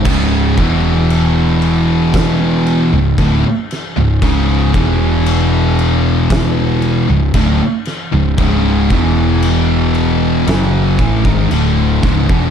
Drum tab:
CC |x-x-x-x-x-x-x-x-|x-x-x-x-x-x-x-x-|x-x-x-x-x-x-x-x-|
SD |--------o-----o-|--------o-----o-|--------o-----o-|
BD |o-o-----o---o---|o-o-----o---o---|o-o-------oo--oo|